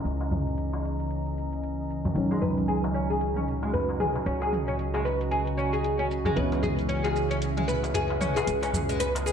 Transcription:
Already playing: C#3 E3 G#3 A#3 C#4 D#4 D#5 A#5
0.05 C#2, closed hi-hat, shaker
0.21 closed hi-hat, darbuka ka, darbuka tek, shaker
0.31 mid tom, darbuka dum, shaker
0.47 closed hi-hat, shaker
0.58 closed hi-hat, shaker
0.73 closed hi-hat, darbuka ka, darbuka tek, shaker
0.85 shaker
1.00 closed hi-hat, darbuka ka, shaker
1.11 closed hi-hat, shaker
1.26 closed hi-hat
1.38 shaker
1.53 closed hi-hat, shaker
1.63 closed hi-hat, shaker
1.90 shaker
2.05 closed hi-hat, mid tom, darbuka dum, shaker
2.13 C#2 D#3 F#3, closed hi-hat, shaker
2.17 C#4
2.31 G#3, closed hi-hat, darbuka tek, shaker
2.42 B4, mid tom, darbuka dum, shaker
2.58 F#4, closed hi-hat, shaker
2.68 G#4, closed hi-hat, shaker
2.84 closed hi-hat, darbuka ka, darbuka tek, shaker
2.94 C#4, shaker
3.10 G#4, closed hi-hat, shaker
3.21 closed hi-hat, shaker
3.36 C#4, closed hi-hat, mid tom
3.48 shaker
3.63 G#3, closed hi-hat, darbuka tek, shaker
3.73 B4, closed hi-hat, darbuka dum, shaker
3.89 darbuka ka, darbuka tek
4.00 G#4, mid tom, darbuka ka, shaker
4.15 closed hi-hat, darbuka tek, shaker
4.26 C#2 C#4, closed hi-hat, shaker
4.42 G#4, closed hi-hat, darbuka tek, shaker
4.53 mid tom, shaker
4.68 C#4, closed hi-hat, shaker
4.79 closed hi-hat, shaker
4.94 G#3, closed hi-hat, darbuka ka, darbuka tek, shaker
5.05 B4, shaker
5.21 closed hi-hat, darbuka ka, shaker
5.31 G#4, closed hi-hat, shaker
5.47 closed hi-hat
5.57 C#4, shaker
5.73 G#4, closed hi-hat, shaker
5.84 closed hi-hat, shaker
5.99 C#4
6.11 shaker
6.25 G#3, closed hi-hat, mid tom, darbuka dum, shaker
6.35 C#2 C#3 E3 G#3 B3 B4, closed hi-hat, shaker
6.39 C#4
6.52 closed hi-hat, darbuka tek, shaker
6.57 E5
6.63 G#4, mid tom, darbuka dum, shaker
6.79 closed hi-hat, shaker
6.89 C#4, closed hi-hat, shaker
7.00 G#4
7.04 G#4, closed hi-hat, darbuka ka, darbuka tek, shaker
7.16 shaker
7.31 C#4, closed hi-hat, shaker
7.42 closed hi-hat, shaker
7.57 G#3, closed hi-hat, mid tom
7.63 B4
7.68 B4, shaker
7.83 closed hi-hat, darbuka tek, shaker
7.94 G#4, closed hi-hat, darbuka dum, shaker
8.10 darbuka ka, darbuka tek
8.21 C#4, mid tom, darbuka ka, shaker
8.36 G#4, closed hi-hat, darbuka tek, shaker
8.47 C#2, closed hi-hat, shaker
8.63 C#4, closed hi-hat, darbuka ka, darbuka tek, shaker
8.73 mid tom, darbuka dum, shaker
8.89 G#3, closed hi-hat, shaker
9.00 B4, closed hi-hat, shaker
9.15 closed hi-hat, darbuka ka, darbuka tek, shaker
9.26 G#4, shaker

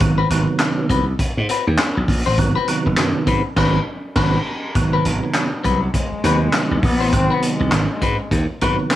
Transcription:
0.00 G#1 C3 D#3 F#3 B3, muted clean electric guitar stroke, kick, closed hi-hat
0.18 C4 F#4 B4
0.29 G#1 C3 D#3 F#3 B3, muted clean electric guitar stroke, closed hi-hat
0.46 muted clean electric guitar stroke
0.59 muted clean electric guitar stroke, snare, clap, closed hi-hat
0.89 C2 C4 F#4 B4, kick, closed hi-hat
1.07 muted clean electric guitar stroke
1.19 muted clean electric guitar stroke, kick, closed hi-hat
1.37 G#2
1.49 C4 F#4 B4, closed hi-hat
1.67 D#2, muted clean electric guitar stroke
1.78 muted clean electric guitar stroke, snare, clap, closed hi-hat
1.95 B1, muted clean electric guitar stroke
2.08 A#1, kick, open hi-hat
2.26 A1 C4 F#4 C5
2.38 G#1 C3 D#3 F#3 B3, muted clean electric guitar stroke, kick, closed hi-hat
2.56 C4 F#4 B4
2.68 C3 D#3 F#3 B3, muted clean electric guitar stroke, closed hi-hat
2.86 F#1, muted clean electric guitar stroke
2.97 F#2, muted clean electric guitar stroke, snare, clap, closed hi-hat
3.27 G#2 C4 F#4 B4, kick, closed hi-hat
3.47 muted clean electric guitar stroke
3.56 G#1 C3 D#3 F#3 B3 C4 F#4 B4, kick, snare, crash
4.16 G#1 C3 D#3 F#3 B3 C4 F#4 B4, kick, snare, crash
4.75 G#1 B2 D#3 F#3 B3, muted clean electric guitar stroke, kick, closed hi-hat
4.82 C3
4.93 C4 F#4 B4
5.05 G#1, muted clean electric guitar stroke, closed hi-hat
5.24 muted clean electric guitar stroke
5.34 muted clean electric guitar stroke, snare, clap, closed hi-hat
5.64 C2 F#3 C4 F#4 B4, kick, closed hi-hat
5.82 muted clean electric guitar stroke
5.94 G#3, muted clean electric guitar stroke, kick, closed hi-hat
6.12 muted slap bass stroke
6.24 D#2 C3 D#3 F#3 B3 C4 F#4 B4, closed hi-hat
6.41 muted clean electric guitar stroke
6.53 muted clean electric guitar stroke, snare, clap, closed hi-hat
6.71 C2, muted clean electric guitar stroke
6.83 A#1 B3, kick, open hi-hat
7.00 A1 C4 F#4 C5
7.12 G#1 C3 D#3 F#3 B3 C4, muted clean electric guitar stroke, kick, closed hi-hat
7.30 B3 C4 F#4 B4
7.42 muted clean electric guitar stroke, closed hi-hat
7.53 G#3
7.60 C2, muted clean electric guitar stroke
7.71 G#1, muted clean electric guitar stroke, snare, clap, closed hi-hat
7.93 G#3
8.01 G#2 C4 F#4 B4, kick, closed hi-hat
8.20 muted clean electric guitar stroke
8.31 D#2, muted clean electric guitar stroke, kick, closed hi-hat
8.61 G#2 C3 D#3 F#3 B3 C4 F#4 B4, kick, closed hi-hat
8.80 muted clean electric guitar stroke
8.91 muted clean electric guitar stroke, snare, clap, closed hi-hat

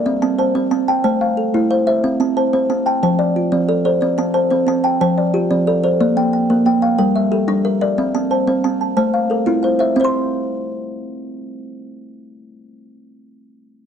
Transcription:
Already playing: A#4 D5
0.06 C4 E5
0.22 C4 A5
0.39 C5 A5
0.55 C4 C5
0.71 C4 A5
0.88 G5 A5
1.04 A3 C5 A5
1.21 F5
1.37 A4
1.54 A3 E4
1.71 C5 F5
1.87 C5 E5 F5
2.04 C4 F5
2.20 C4 A5
2.37 C5 A5
2.53 C4 C5
2.70 C4 A5
2.86 G5 A5
3.03 F3 C5 A5
3.19 D5
3.36 F4
3.52 F3 C4 D5
3.69 A4 D5
3.85 A4 C5 D5
4.01 C4 D5
4.18 C4 A5
4.34 C5 A5
4.51 C4 C5
4.67 C4 A5
4.84 G5 A5
5.01 F3 C5 A5
5.18 D5
5.34 F4 G4
5.51 F3 C4 D5
5.67 A4 D5
5.83 A4 C5 D5
6.00 A#3 D5
6.17 A#3 G5
6.33 G5
6.50 A#3 A#4
6.66 A#3 G5
6.82 F5 G5
6.98 G3 A#4 G5
7.16 E5
7.32 G4 A4
7.48 G3 D4 E5
7.65 A#4 E5
7.81 A#4 D5 E5
7.98 C4 E5
8.15 C4 A5
8.31 C5 A5
8.47 C4 C5
8.64 C4 A5
8.81 A5
8.97 A3 C5 A5
9.14 F5
9.30 A4 A#4
9.46 C4 E4 F4
9.63 C5 F5
9.79 C5 E5 F5
9.96 C4 C5 F5
10.01 C5 C6

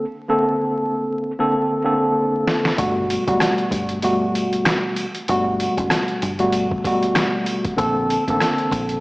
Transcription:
0.29 D3 A#3 C4 A4
1.39 D3 A#3 C4 A4
1.84 D3 A#3 C4 A4
2.47 snare
2.65 snare
2.77 G1 B2 G3 A3 F#4, kick, closed hi-hat, sleigh bells
3.10 closed hi-hat, sleigh bells
3.27 F#1 B2 G3 A3 F#4, kick, closed hi-hat
3.40 cross-stick, snare, closed hi-hat, sleigh bells
3.58 closed hi-hat
3.71 G1, kick, closed hi-hat, sleigh bells
3.89 closed hi-hat
4.02 B2 G3 A3 F#4, closed hi-hat, sleigh bells
4.35 closed hi-hat, sleigh bells
4.53 closed hi-hat
4.65 cross-stick, snare, closed hi-hat, sleigh bells
4.96 closed hi-hat, sleigh bells
5.15 closed hi-hat
5.28 G1 B2 G3 A3 F#4, closed hi-hat, sleigh bells
5.60 closed hi-hat, sleigh bells
5.78 F#1, kick, closed hi-hat
5.90 cross-stick, snare, closed hi-hat, sleigh bells
6.08 closed hi-hat
6.22 G1, closed hi-hat, sleigh bells
6.39 B2 G3 A3 F#4, closed hi-hat
6.52 closed hi-hat, sleigh bells
6.71 kick
6.84 B2 G3 A3 F#4, kick, closed hi-hat, sleigh bells
7.03 closed hi-hat
7.15 cross-stick, snare, closed hi-hat, sleigh bells
7.46 closed hi-hat, sleigh bells
7.65 kick, closed hi-hat
7.77 A#1 D3 A#3 C4 A4, kick, closed hi-hat, sleigh bells
8.10 closed hi-hat, sleigh bells
8.28 A1 D3 A#3 C4 A4, kick, closed hi-hat
8.40 cross-stick, snare, closed hi-hat, sleigh bells
8.58 closed hi-hat
8.71 A#1, kick, closed hi-hat, sleigh bells
8.89 closed hi-hat

